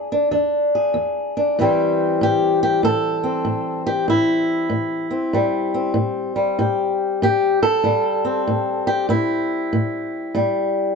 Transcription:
0.00 0.28 E2 medium
0.00 0.11 D4 medium
0.00 0.14 G#4 loud
0.12 0.30 D4 soft
0.31 0.91 E2 medium
0.31 1.35 D4 medium
0.75 1.57 G#4 medium
0.94 1.53 E2 medium
1.37 1.56 D4 medium
1.59 2.17 A2 medium
1.59 5.09 E3 medium
1.59 5.33 G3 medium
1.59 3.23 C4 medium
1.59 2.23 G4 medium
2.21 2.79 A2 medium
2.21 2.62 G4 loud
2.63 2.84 G4 medium
2.83 3.41 A2 medium
2.83 3.86 A4 loud
3.24 5.10 C4 soft
3.45 4.04 A2 medium
3.87 4.09 G4 medium
4.08 4.66 A2 medium
4.08 5.97 E4 medium
4.70 5.29 A2 medium
5.11 5.74 C4 soft
5.33 5.92 A2 medium
5.33 6.35 G3 soft
5.74 8.24 C4 soft
5.94 6.53 A2 medium
6.36 7.84 G3 soft
6.59 7.17 A2 medium
6.59 7.23 G4 soft
7.22 7.80 A2 medium
7.22 7.62 G4 loud
7.63 8.87 A4 loud
7.84 8.42 A2 medium
7.84 10.34 G3 medium
8.25 10.95 C4 medium
8.47 9.05 A2 medium
8.87 9.09 G4 medium
9.09 9.67 A2 medium
9.09 10.95 E4 medium
9.73 10.30 A2 medium
10.35 10.92 A2 medium
10.35 10.95 G3 medium

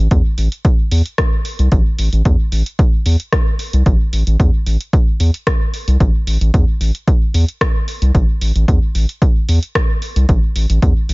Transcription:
0.11 0.22 E2 medium
0.11 kick loud
0.11 closed hi-hat soft
0.38 0.48 A1 medium
0.38 open hi-hat medium
0.52 closed hi-hat medium
0.65 kick loud
0.65 closed hi-hat soft
0.91 1.02 E2 medium
0.91 open hi-hat medium
1.06 closed hi-hat medium
1.18 kick loud
1.18 cross-stick medium
1.18 closed hi-hat soft
1.45 open hi-hat medium
1.59 1.69 C2 medium
1.59 closed hi-hat soft
1.72 1.82 A1 loud
1.72 kick loud
1.72 closed hi-hat soft
1.99 2.09 A1 medium
1.99 open hi-hat medium
2.13 2.22 A1 medium
2.13 closed hi-hat soft
2.25 2.36 E2 medium
2.25 kick loud
2.25 closed hi-hat soft
2.52 2.63 A1 medium
2.52 open hi-hat medium
2.66 closed hi-hat medium
2.79 kick loud
2.79 closed hi-hat soft
3.06 3.16 E2 medium
3.06 open hi-hat medium
3.20 closed hi-hat soft
3.33 kick loud
3.33 cross-stick medium
3.33 closed hi-hat soft
3.59 open hi-hat medium
3.73 3.83 C2 medium
3.73 closed hi-hat medium
3.86 3.97 A1 loud
3.86 kick loud
3.86 closed hi-hat soft
4.13 4.23 A1 medium
4.13 open hi-hat medium
4.27 4.36 A1 medium
4.27 closed hi-hat soft
4.40 4.50 E2 medium
4.40 kick loud
4.40 closed hi-hat soft
4.66 4.77 A1 medium
4.66 open hi-hat medium
4.81 closed hi-hat medium
4.93 kick loud
4.93 closed hi-hat soft
5.20 5.30 E2 medium
5.20 open hi-hat medium
5.34 closed hi-hat soft
5.47 kick loud
5.47 cross-stick medium
5.47 closed hi-hat soft
5.74 open hi-hat medium
5.88 5.97 C2 medium
5.88 closed hi-hat soft
6.00 6.11 A1 loud
6.00 kick loud
6.00 closed hi-hat soft
6.27 6.38 A1 medium
6.27 open hi-hat medium
6.41 6.51 A1 medium
6.41 closed hi-hat soft
6.54 6.64 E2 medium
6.54 kick loud
6.54 closed hi-hat soft
6.81 6.91 A1 medium
6.81 open hi-hat medium
6.95 closed hi-hat medium
7.08 kick loud
7.08 closed hi-hat soft
7.34 7.45 E2 medium
7.34 open hi-hat medium
7.48 closed hi-hat soft
7.61 kick loud
7.61 cross-stick loud
7.61 closed hi-hat soft
7.88 open hi-hat medium
8.02 8.11 C2 medium
8.02 closed hi-hat soft
8.15 8.25 A1 loud
8.15 kick loud
8.15 closed hi-hat soft
8.41 8.52 A1 medium
8.41 open hi-hat medium
8.56 8.65 A1 medium
8.56 closed hi-hat soft
8.68 8.79 E2 medium
8.68 kick loud
8.68 closed hi-hat soft
8.95 9.06 A1 medium
8.95 open hi-hat medium
9.09 closed hi-hat medium
9.22 kick loud
9.22 closed hi-hat soft
9.49 9.59 E2 medium
9.49 open hi-hat medium
9.63 closed hi-hat soft
9.75 kick loud
9.75 cross-stick loud
9.75 closed hi-hat soft
10.02 open hi-hat medium
10.16 10.26 C2 medium
10.16 closed hi-hat soft
10.29 10.39 A1 loud
10.29 kick loud
10.29 closed hi-hat soft
10.56 10.66 A1 medium
10.56 open hi-hat medium
10.70 10.79 A1 medium
10.70 closed hi-hat soft
10.82 10.93 E2 medium
10.82 kick loud
10.82 closed hi-hat soft
11.09 11.14 A1 medium
11.09 open hi-hat medium

